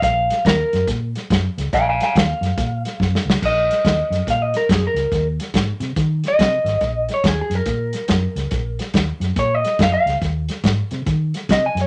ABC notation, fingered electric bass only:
X:1
M:4/4
L:1/8
Q:"Swing" 1/4=141
K:Bbm
V:1 name="Fingered electric bass" clef=bass
B,,,2 E,, G,, B,,2 G,, D,, | B,,,2 E,, G,, B,,2 G,, D,, | B,,,2 E,, G,, B,,2 G,, D,, | E,,2 A,, C, E,2 C, A,,, |
B,,,2 E,, G,, B,,2 G,, D,, | B,,,2 E,, G,, B,,2 G,, D,, | E,,2 A,, C, E,2 C, G,, |]